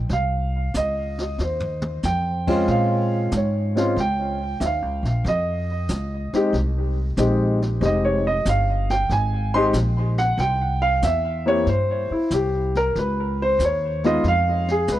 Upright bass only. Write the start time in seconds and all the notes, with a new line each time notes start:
0.09 C2
0.74 C#2
1.38 D#2
2.03 F2
2.68 A#2
3.32 G#2
3.96 C#2
4.60 D#2
4.82 C#2
5.03 A#1
5.24 F2
5.89 C#2
6.33 muted upright bass stroke
6.53 C2
7.17 A#1
7.81 F1
8.45 G1
9.09 G#1
9.73 A#1
10.38 C2
11.02 E2
11.66 G2
12.10 muted upright bass stroke
12.31 C2
12.95 C#2
13.59 D#2
14.24 F2
14.88 C#2